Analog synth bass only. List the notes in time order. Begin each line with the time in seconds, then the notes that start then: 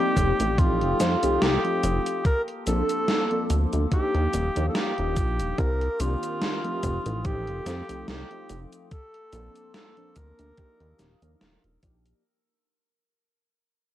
0.17 F1
0.40 A1
0.81 F1
1.01 F2
1.23 C2
1.42 C2
1.84 F1
2.67 A#1
3.50 D2
3.73 D2
4.15 D#2
4.34 D#1
4.57 D#2
4.98 D#1
5.17 A#1
5.40 D#1
5.58 C2
6.00 C2
6.83 F1
7.06 A1
7.48 F1
7.66 F2
7.90 C2
8.08 C2
8.50 F1
9.33 A#1
10.17 D2
10.39 D2
10.81 D#2
11.00 D#1
11.22 D#2
11.42 D#1
11.65 D#1
11.83 A#1